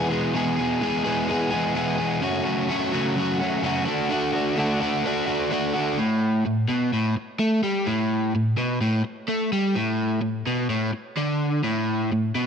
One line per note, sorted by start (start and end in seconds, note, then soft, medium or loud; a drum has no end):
0.00 0.32 E2 medium
0.00 0.33 B2 medium
0.00 0.12 E3 medium
0.00 0.12 G#3 loud
0.00 0.10 B3 loud
0.10 0.34 E3 medium
0.10 0.35 G#3 medium
0.10 0.35 B3 medium
0.10 0.36 G#4 medium
0.33 0.81 E2 medium
0.33 0.81 B2 medium
0.33 0.59 E3 loud
0.33 0.59 G#3 medium
0.33 0.57 B3 loud
0.33 0.56 G#4 medium
0.56 0.80 E3 medium
0.56 0.81 G#3 medium
0.56 0.82 B3 medium
0.56 0.84 G#4 medium
0.81 1.05 E3 medium
0.81 1.05 G#3 medium
0.81 1.04 B3 medium
0.81 1.03 G#4 medium
1.04 1.53 E2 medium
1.04 1.53 B2 medium
1.04 1.27 E3 medium
1.04 1.28 G#3 medium
1.04 1.29 B3 medium
1.04 1.30 G#4 medium
1.28 1.53 E3 medium
1.28 1.52 G#3 medium
1.28 1.51 B3 medium
1.28 1.50 G#4 medium
1.51 1.74 E3 medium
1.51 1.75 G#3 medium
1.51 1.75 B3 medium
1.51 1.76 G#4 medium
1.74 2.20 E2 medium
1.74 2.21 B2 medium
1.74 2.00 E3 loud
1.74 1.99 G#3 loud
1.74 1.98 B3 medium
1.74 1.97 G#4 medium
1.98 2.22 E3 medium
1.98 2.21 G#3 medium
1.98 2.21 B3 medium
1.98 2.20 G#4 medium
2.21 2.68 F#2 medium
2.21 2.69 C#3 medium
2.21 2.47 F#3 medium
2.21 2.46 A3 loud
2.21 2.44 C#4 loud
2.21 2.43 F#4 loud
2.44 2.68 F#3 medium
2.44 2.68 A3 medium
2.44 2.69 C#4 medium
2.44 2.71 F#4 medium
2.68 2.94 F#3 medium
2.68 2.93 A3 medium
2.68 2.92 C#4 loud
2.68 2.92 F#4 loud
2.92 3.41 F#2 medium
2.92 3.41 C#3 medium
2.92 3.15 F#3 medium
2.92 3.17 A3 medium
2.92 3.18 C#4 medium
2.92 3.19 F#4 medium
3.16 3.42 F#3 medium
3.16 3.42 A3 medium
3.16 3.40 C#4 medium
3.16 3.38 F#4 medium
3.40 3.63 F#3 medium
3.40 3.65 A3 medium
3.40 3.65 C#4 medium
3.40 3.65 F#4 medium
3.63 3.85 F#2 medium
3.63 3.86 C#3 loud
3.63 3.86 F#3 medium
3.63 3.87 A3 loud
3.63 3.86 C#4 loud
3.63 3.84 F#4 loud
3.85 4.09 A3 medium
3.85 4.11 D4 medium
3.85 4.11 F#4 medium
3.89 4.08 D3 medium
4.09 4.55 D3 loud
4.09 4.35 A3 medium
4.09 4.33 D4 medium
4.09 4.32 F#4 loud
4.33 4.56 A3 medium
4.33 4.58 D4 medium
4.33 4.58 F#4 medium
4.56 4.82 D3 medium
4.56 4.81 A3 medium
4.56 4.81 D4 medium
4.56 4.79 F#4 medium
4.81 5.03 D3 medium
4.81 5.04 A3 medium
4.81 5.05 D4 medium
4.81 5.06 F#4 medium
5.04 5.49 D3 medium
5.04 5.28 A3 medium
5.04 5.27 D4 medium
5.04 5.25 F#4 medium
5.26 5.50 A3 medium
5.26 5.51 D4 medium
5.26 5.52 F#4 medium
5.50 5.97 D3 medium
5.50 5.75 A3 loud
5.50 5.74 D4 loud
5.50 5.72 F#4 loud
5.73 5.98 A3 medium
5.73 5.97 D4 medium
5.73 5.96 F#4 medium
5.97 6.44 A2 medium
6.45 6.64 A2 medium
6.68 6.92 B2 loud
6.93 7.16 A2 medium
7.17 muted overdriven electric guitar stroke soft
7.39 7.63 A3 loud
7.63 7.86 G3 loud
7.86 8.33 A2 loud
8.35 8.54 A2 medium
8.57 8.81 B2 medium
8.81 9.03 A2 loud
9.05 muted overdriven electric guitar stroke medium
9.29 9.52 A3 medium
9.53 9.75 G3 medium
9.75 10.21 A2 loud
10.22 10.41 A2 medium
10.47 10.69 B2 medium
10.70 10.92 A2 loud
10.93 muted overdriven electric guitar stroke medium
11.17 11.63 D3 loud
11.64 12.11 A2 loud
12.12 12.31 A2 medium
12.35 12.46 B2 medium